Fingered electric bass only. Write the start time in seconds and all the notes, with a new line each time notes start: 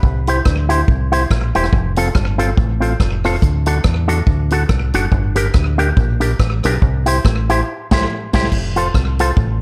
0.03 C2
0.46 D2
0.88 C2
1.31 A#1
1.56 E1
1.73 F1
2.15 G1
2.57 A1
3.00 F1
3.42 D2
3.84 E2
4.27 D2
4.70 C2
4.94 F#1
5.12 G1
5.54 D2
5.97 A#1
6.39 A1
6.65 B1
6.82 C2
7.25 A1
7.91 C2
8.34 C2
8.52 F1
8.94 C2
9.37 A1